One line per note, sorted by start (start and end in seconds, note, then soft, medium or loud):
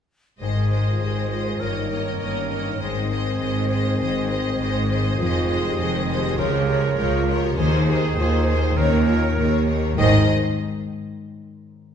0.40 0.95 G#1 soft
0.40 0.94 G#2 soft
0.40 1.63 G#2 soft
0.40 5.16 D#3 soft
0.40 0.70 G#3 soft
0.40 0.84 D#4 medium
0.40 1.62 G#4 soft
0.40 0.70 C5 soft
0.40 1.64 C5 soft
0.40 0.69 D#5 soft
0.70 1.00 G#3 soft
0.70 1.00 C5 soft
0.70 1.30 C5 soft
0.70 1.00 D#5 soft
0.88 1.03 F4 medium
1.01 1.54 G#1 soft
1.01 1.54 G#2 soft
1.01 1.29 G#3 soft
1.01 1.32 G4 medium
1.01 1.30 C5 soft
1.01 1.52 C#5 soft
1.01 1.29 D#5 soft
1.30 1.60 G#3 soft
1.30 1.61 F4 soft
1.30 1.64 C5 soft
1.30 1.61 C5 soft
1.30 1.60 D#5 soft
1.60 2.14 G1 soft
1.60 2.14 G2 soft
1.60 2.84 G2 soft
1.60 1.89 A#3 soft
1.60 2.06 D#4 medium
1.60 2.81 A#4 soft
1.60 1.89 C#5 soft
1.60 2.81 C#5 soft
1.60 1.90 D#5 soft
1.90 2.19 A#3 soft
1.90 2.20 C#5 soft
1.90 2.50 C#5 soft
1.90 2.19 D#5 soft
2.08 2.14 C4 soft
2.20 2.74 G1 soft
2.20 2.74 G2 soft
2.20 2.49 A#3 soft
2.20 2.65 C#4 soft
2.20 2.49 C#5 soft
2.20 2.49 D#5 soft
2.20 2.72 D#5 soft
2.50 2.80 A#3 soft
2.50 2.80 C#5 soft
2.50 2.83 C#5 soft
2.50 2.79 D#5 soft
2.67 2.82 D#4 medium
2.80 3.34 G#1 soft
2.80 3.33 G#2 medium
2.80 5.23 G#2 soft
2.80 3.09 G#3 soft
2.80 5.16 C4 medium
2.80 6.35 G#4 soft
2.80 3.10 C5 soft
2.80 6.35 C5 soft
2.80 3.10 D#5 soft
3.10 3.38 G#3 soft
3.10 3.70 C5 soft
3.10 3.39 C5 soft
3.10 3.40 D#5 soft
3.39 3.93 G#1 soft
3.39 3.93 G#2 medium
3.39 3.69 G#3 soft
3.39 3.70 C5 soft
3.39 3.92 C#5 soft
3.39 3.69 D#5 soft
3.70 3.99 G#3 soft
3.70 4.30 C5 soft
3.70 3.99 C5 soft
3.70 3.99 D#5 soft
3.99 4.53 G#1 medium
3.99 4.52 G#2 medium
3.99 5.22 D#3 soft
3.99 4.30 G#3 soft
3.99 4.28 C5 soft
3.99 4.28 D#5 soft
4.29 4.59 G#3 soft
4.29 4.59 C5 soft
4.29 4.89 C5 soft
4.29 4.59 D#5 soft
4.59 5.13 G#1 medium
4.59 5.12 G#2 medium
4.59 4.89 G#3 soft
4.59 4.89 C5 soft
4.59 5.11 C#5 soft
4.59 4.89 D#5 soft
4.90 5.18 G#3 soft
4.90 5.19 C5 soft
4.90 5.48 C5 soft
4.90 5.20 D#5 soft
5.18 5.72 F1 medium
5.18 5.72 F2 medium
5.18 6.41 F2 medium
5.18 6.40 D#3 medium
5.18 5.48 G#3 medium
5.18 5.63 F4 medium
5.18 5.48 C5 medium
5.18 5.48 D#5 medium
5.49 5.78 G#3 medium
5.49 5.79 C5 medium
5.49 6.08 C5 soft
5.49 5.79 D#5 medium
5.67 5.80 G4 medium
5.78 6.32 F1 medium
5.78 6.31 F2 medium
5.78 6.07 G#3 medium
5.78 5.94 G#4 medium
5.78 6.08 C5 medium
5.78 6.30 C#5 soft
5.78 6.08 D#5 soft
6.09 6.38 G#3 medium
6.09 6.38 G4 medium
6.09 6.38 C5 medium
6.09 6.41 C5 medium
6.09 6.38 D#5 medium
6.38 6.91 C#2 medium
6.38 7.30 C#3 medium
6.38 7.60 C#3 medium
6.38 6.66 F3 medium
6.38 6.52 F4 medium
6.38 7.28 A#4 medium
6.38 6.68 A#4 medium
6.38 6.65 C#5 medium
6.38 7.29 C#5 medium
6.66 6.96 F3 medium
6.66 6.82 G4 medium
6.66 7.27 A#4 soft
6.66 6.97 A#4 medium
6.66 6.96 C#5 medium
6.97 7.51 C#2 medium
6.97 7.25 F3 medium
6.97 7.42 F4 medium
6.97 7.27 A#4 medium
6.97 7.49 C5 soft
6.97 7.27 C#5 medium
7.26 7.57 F3 medium
7.26 7.57 A#4 medium
7.26 7.61 A#4 medium
7.26 7.58 C#5 medium
7.45 7.59 G4 medium
7.57 8.11 D#2 medium
7.57 7.86 D#3 medium
7.57 9.64 D#3 medium
7.57 8.76 D#3 medium
7.57 7.71 G#4 medium
7.57 7.87 G#4 medium
7.57 8.79 G#4 medium
7.57 7.88 C5 medium
7.57 8.79 C5 medium
7.87 8.16 D#3 medium
7.87 8.02 G4 medium
7.87 8.17 G#4 medium
7.87 8.47 C5 medium
7.87 8.17 C5 medium
8.17 8.71 D#2 medium
8.17 8.45 D#3 medium
8.17 8.47 F4 loud
8.17 8.46 G#4 medium
8.17 8.47 C5 medium
8.17 8.68 C#5 soft
8.46 8.76 D#3 medium
8.46 8.61 D#4 medium
8.46 8.77 G#4 medium
8.46 8.80 C5 medium
8.46 8.77 C5 medium
8.77 9.30 D#2 medium
8.77 9.31 D#2 medium
8.77 9.06 D#3 medium
8.77 10.01 D#3 medium
8.77 8.90 C#4 medium
8.77 9.68 A#4 medium
8.77 9.07 A#4 medium
8.77 9.68 C#5 medium
8.77 9.07 C#5 medium
9.07 9.37 D#3 medium
9.07 9.21 F4 medium
9.07 9.67 A#4 soft
9.07 9.37 A#4 soft
9.07 9.37 C#5 medium
9.38 9.91 D#2 medium
9.38 9.92 D#2 medium
9.38 9.66 D#3 soft
9.38 9.98 G4 medium
9.38 9.66 A#4 medium
9.38 9.90 C5 soft
9.38 9.68 C#5 medium
9.68 9.97 D#3 soft
9.68 9.97 A#4 soft
9.68 10.01 A#4 soft
9.68 9.98 C#5 soft
9.92 10.32 G#2 medium
9.92 10.32 G#3 medium
9.97 10.32 G#1 medium
9.97 10.32 G#2 medium
9.97 10.23 D#3 medium
9.97 10.32 D#3 medium
9.97 10.32 C4 medium
9.97 10.32 D#4 medium
9.97 10.32 G#4 medium
9.97 10.24 C5 medium
9.97 10.31 D#5 medium
9.97 10.24 D#5 medium
9.97 10.32 D#5 medium
10.02 10.32 C5 medium
10.02 10.32 D#5 medium